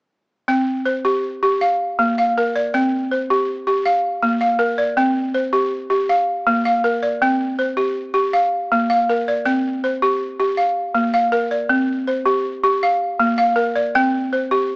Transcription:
0.48 0.85 C4 medium
0.48 1.04 G5 medium
0.85 1.41 C5 medium
1.05 1.41 G4 medium
1.43 1.61 G4 medium
1.61 2.17 F5 medium
1.99 2.36 A#3 medium
2.18 2.73 F5 medium
2.38 2.74 A#4 medium
2.56 2.92 D5 medium
2.74 3.11 C4 medium
2.74 3.29 G5 medium
3.11 3.67 C5 medium
3.30 3.66 G4 medium
3.67 3.85 G4 medium
3.86 4.40 F5 medium
4.23 4.60 A#3 medium
4.41 4.97 F5 medium
4.59 4.97 A#4 medium
4.78 5.16 D5 medium
4.97 5.34 C4 medium
4.97 5.53 G5 medium
5.34 5.91 C5 medium
5.53 5.89 G4 medium
5.90 6.09 G4 medium
6.09 6.64 F5 medium
6.47 6.84 A#3 medium
6.65 7.21 F5 medium
6.84 7.21 A#4 medium
7.03 7.40 D5 medium
7.22 7.59 C4 medium
7.22 7.78 G5 medium
7.59 8.15 C5 medium
7.77 8.13 G4 medium
8.14 8.33 G4 medium
8.33 8.89 F5 medium
8.72 9.09 A#3 medium
8.90 9.46 F5 medium
9.09 9.46 A#4 medium
9.28 9.65 D5 medium
9.45 9.83 C4 medium
9.45 10.02 G5 medium
9.84 10.39 C5 medium
10.02 10.38 G4 medium
10.40 10.58 G4 medium
10.57 11.12 F5 medium
10.95 11.32 A#3 medium
11.14 11.70 F5 medium
11.32 11.70 A#4 medium
11.51 11.88 D5 medium
11.69 12.07 C4 medium
12.07 12.63 C5 medium
12.26 12.62 G4 medium
12.64 12.82 G4 medium
12.83 13.37 F5 medium
13.20 13.57 A#3 medium
13.38 13.94 F5 medium
13.56 13.94 A#4 medium
13.76 14.13 D5 medium
13.95 14.32 C4 medium
13.95 14.51 G5 medium
14.33 14.76 C5 medium
14.51 14.76 G4 medium

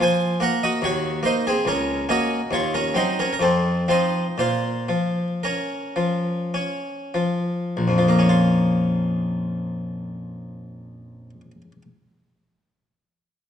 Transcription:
0.00 0.43 F3 medium
0.00 0.40 C5 medium
0.00 0.42 G#5 loud
0.40 0.81 A#3 medium
0.40 0.61 A#4 medium
0.40 0.62 F#5 loud
0.63 0.82 F#4 medium
0.63 0.83 D#5 loud
0.82 1.22 D#2 medium
0.82 1.22 F#4 medium
0.82 1.18 C#5 loud
1.23 1.53 A#3 medium
1.23 1.44 D#4 medium
1.23 1.45 C5 medium
1.47 1.66 C4 medium
1.47 1.66 G#4 medium
1.65 2.06 C#2 medium
1.65 2.06 C#4 medium
1.65 2.02 A#4 medium
2.09 2.39 A#3 medium
2.09 2.39 C#4 medium
2.09 2.49 F#4 medium
2.09 2.52 D#5 medium
2.51 2.93 D#2 medium
2.51 2.73 F4 medium
2.51 2.73 C#5 medium
2.74 2.95 C#4 medium
2.74 2.96 A#4 medium
2.94 3.27 F#3 soft
2.94 3.28 C4 medium
2.94 3.17 D#4 medium
2.94 3.18 C5 medium
3.19 3.33 C#4 medium
3.19 3.31 A#4 medium
3.33 3.40 A#4 medium
3.40 3.86 F2 medium
3.40 3.86 C4 medium
3.40 3.82 A4 medium
3.88 4.24 F3 soft
3.88 4.24 C4 soft
3.88 4.36 D#4 soft
3.88 4.38 C5 medium
4.38 4.88 A#2 soft
4.38 5.40 F4 medium
4.38 5.27 C5 medium
4.89 5.45 F3 soft
5.43 6.53 C#4 soft
5.43 7.16 A#4 soft
5.96 6.57 F3 soft
6.54 7.18 C#4 soft
7.14 7.77 F3 soft
7.77 11.30 A#1 soft
7.88 11.41 F2 soft
7.98 11.51 F3 soft
8.08 11.61 A#3 soft
8.19 11.72 C#4 soft
8.29 11.82 F4 soft

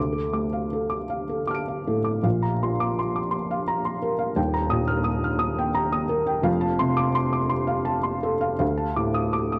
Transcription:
0.00 2.20 D2 medium
0.00 0.27 D6 medium
0.13 0.45 A4 soft
0.33 0.96 A3 soft
0.33 0.65 D6 medium
0.53 0.85 F5 soft
0.73 1.04 A4 soft
0.90 1.21 D6 soft
1.10 1.41 F5 medium
1.29 1.60 A4 soft
1.47 2.19 A5 soft
1.47 1.78 D6 medium
1.47 2.21 F6 soft
1.55 2.23 D7 soft
1.68 1.98 F5 soft
1.87 2.25 A2 soft
1.87 2.17 A4 soft
2.04 2.24 D6 soft
2.23 4.33 A#1 medium
2.23 4.33 A#2 medium
2.23 2.53 F5 medium
2.42 2.72 A#5 medium
2.63 3.20 F3 medium
2.63 2.91 C6 medium
2.80 2.98 D6 medium
2.99 3.27 C6 medium
3.16 3.33 D6 soft
3.31 3.60 C6 medium
3.51 3.79 F5 medium
3.68 3.96 A#5 medium
3.85 4.13 C6 medium
4.02 4.30 A#4 medium
4.19 4.37 F5 medium
4.35 6.42 D#1 medium
4.35 6.43 D#2 medium
4.35 4.64 G5 medium
4.54 4.82 A#5 medium
4.70 5.27 A#2 medium
4.70 4.99 D#6 medium
4.88 5.06 F6 medium
5.04 5.34 D#6 medium
5.24 5.42 F6 medium
5.39 5.69 D#6 medium
5.58 5.87 G5 medium
5.75 6.04 A#5 medium
5.92 6.22 D#6 medium
6.09 6.39 A#4 medium
6.27 6.46 G5 medium
6.42 8.55 F1 medium
6.42 8.55 F2 medium
6.42 6.73 F5 medium
6.61 6.91 A5 medium
6.79 7.37 C3 medium
6.79 7.09 C6 medium
6.97 7.16 D6 medium
7.15 7.45 C6 medium
7.33 7.52 D6 medium
7.49 7.80 C6 medium
7.67 7.98 F5 medium
7.85 8.16 A5 medium
8.03 8.34 C6 medium
8.23 8.53 A4 medium
8.41 8.57 F5 medium
8.59 9.59 D2 medium
8.59 8.90 F5 medium
8.78 9.08 A5 medium
8.96 9.56 A2 medium
8.96 9.27 D6 medium
9.14 9.34 D#6 medium
9.33 9.59 D6 medium
9.52 9.59 D#6 medium

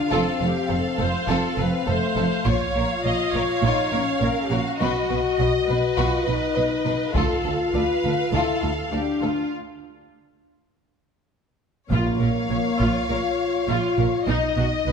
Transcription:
0.00 0.12 D4 medium
0.00 0.11 F4 soft
0.00 2.42 F5 soft
0.11 0.20 F1 medium
0.11 0.20 F2 soft
0.11 1.12 C4 medium
0.11 0.38 F4 soft
0.11 0.38 A4 medium
0.11 0.40 A4 soft
0.41 0.49 F1 soft
0.41 0.50 F2 soft
0.41 0.70 G4 soft
0.41 0.49 A4 soft
0.69 0.78 F1 soft
0.69 0.78 F2 soft
0.69 0.77 A4 soft
0.69 1.00 A4 soft
0.69 0.77 C5 soft
0.98 1.07 F1 soft
0.98 1.08 F2 soft
0.98 1.06 A4 soft
0.98 1.29 C5 medium
1.27 1.36 F1 medium
1.27 1.37 F2 medium
1.27 1.86 C4 medium
1.27 1.55 F4 soft
1.27 1.55 A4 medium
1.27 1.57 A4 medium
1.57 1.66 F1 soft
1.57 1.66 F2 soft
1.57 1.65 A4 soft
1.57 1.87 B4 soft
1.86 1.95 F1 soft
1.86 1.95 F2 soft
1.86 2.46 A3 medium
1.86 1.95 A4 soft
1.86 1.94 C5 soft
1.86 2.45 C5 medium
2.16 2.25 F1 soft
2.16 2.24 F2 soft
2.16 2.25 A4 soft
2.46 2.54 A#1 medium
2.46 2.54 A#2 medium
2.46 2.73 F4 medium
2.46 3.61 F4 medium
2.46 2.73 C#5 medium
2.46 3.05 C#5 medium
2.46 4.77 F5 soft
2.46 taiko soft
2.75 2.83 A#1 soft
2.75 2.83 A#2 soft
2.75 2.85 A#4 soft
2.75 2.85 C#5 soft
3.04 3.12 A#1 soft
3.04 3.12 A#2 soft
3.04 3.13 C#5 soft
3.04 3.33 D#5 medium
3.34 3.42 A#1 soft
3.34 3.42 A#2 soft
3.34 3.43 A#4 soft
3.34 4.21 C#5 medium
3.34 3.43 C#5 soft
3.34 taiko soft
3.62 3.71 A#1 medium
3.62 3.70 A#2 medium
3.62 3.92 D#4 medium
3.62 3.90 F4 medium
3.62 3.90 C#5 medium
3.91 4.00 A#1 soft
3.91 3.99 A#2 soft
3.91 4.80 C#4 medium
3.91 4.00 A#4 soft
3.91 4.00 C#5 soft
4.21 4.29 A#1 soft
4.21 4.29 A#2 soft
4.21 4.50 A#4 medium
4.21 4.30 C#5 soft
4.50 4.58 A#1 soft
4.50 4.58 A#2 soft
4.50 5.39 F#4 soft
4.50 4.59 A#4 soft
4.50 4.60 C#5 soft
4.80 4.88 B1 medium
4.80 4.88 B2 medium
4.80 5.08 F#4 medium
4.80 5.96 F#4 medium
4.80 5.08 B4 medium
4.80 7.11 D#5 soft
5.10 5.18 B1 soft
5.10 5.18 B2 soft
5.10 5.18 B4 soft
5.39 5.47 B1 soft
5.39 5.47 B2 soft
5.39 5.48 B4 soft
5.39 5.68 D#5 medium
5.39 5.48 D#5 soft
5.68 5.76 B1 soft
5.68 5.77 B2 soft
5.68 7.12 B4 medium
5.68 5.77 B4 soft
5.96 6.05 B1 medium
5.96 6.06 B2 medium
5.96 6.27 F4 medium
5.96 6.24 F#4 medium
5.96 6.24 B4 medium
6.26 6.35 B1 soft
6.26 6.35 B2 soft
6.26 7.15 D#4 medium
6.26 6.34 B4 soft
6.55 6.64 B1 soft
6.55 6.65 B2 soft
6.55 6.63 B4 soft
6.55 6.63 D#5 soft
6.85 6.94 B1 soft
6.85 6.94 B2 soft
6.85 6.93 B4 soft
7.14 7.23 D2 medium
7.14 7.24 D2 soft
7.14 8.30 F4 medium
7.14 7.42 F4 soft
7.14 7.74 A4 medium
7.14 7.42 A4 soft
7.14 9.52 F5 soft
7.14 taiko soft
7.44 7.52 D2 soft
7.44 7.53 D2 soft
7.44 7.53 A4 soft
7.73 7.82 D2 soft
7.73 7.82 A4 soft
7.73 8.31 B4 soft
7.73 7.82 D5 soft
8.03 8.11 D2 soft
8.03 8.12 A4 soft
8.32 8.40 D2 soft
8.32 8.41 D2 soft
8.32 8.73 E4 medium
8.32 8.61 F4 soft
8.32 8.91 A4 soft
8.32 8.61 A4 soft
8.62 8.70 D2 soft
8.62 8.71 A4 soft
8.90 9.00 D2 soft
8.90 9.01 D2 soft
8.90 9.49 D4 soft
8.90 9.21 G4 soft
8.90 9.00 A4 soft
8.90 9.00 D5 soft
9.21 9.29 D2 soft
9.21 9.30 D2 soft
9.21 9.52 F4 soft
9.21 9.31 A4 soft
11.90 11.98 A#1 medium
11.90 12.75 A#2 medium
11.90 11.99 A#2 soft
11.90 13.05 A#3 medium
11.90 12.18 F4 medium
11.90 14.23 C#5 soft
11.90 14.24 F5 soft
11.90 taiko medium
12.19 12.27 A#1 soft
12.19 12.28 A#2 soft
12.19 12.28 A#4 soft
12.49 12.57 A#1 soft
12.49 12.58 A#2 soft
12.49 12.58 C#5 soft
12.80 12.88 A#1 soft
12.80 12.88 A#2 soft
12.80 13.08 F4 soft
12.80 taiko soft
13.09 13.17 A#1 soft
13.09 13.18 A#2 soft
13.09 14.25 F4 medium
13.09 13.18 A#4 soft
13.68 13.76 A#1 soft
13.68 13.76 A#2 soft
13.68 13.96 F4 medium
13.97 14.05 A#1 soft
13.97 14.05 A#2 soft
13.97 14.06 A#4 soft
14.26 14.35 B1 medium
14.26 14.34 B2 medium
14.26 14.92 D#4 medium
14.26 14.55 D#4 medium
14.26 14.92 D#5 soft
14.56 14.64 B1 soft
14.56 14.64 B2 soft
14.56 14.65 F#4 soft
14.86 14.92 B1 soft
14.86 14.92 B2 soft
14.86 14.92 B4 soft

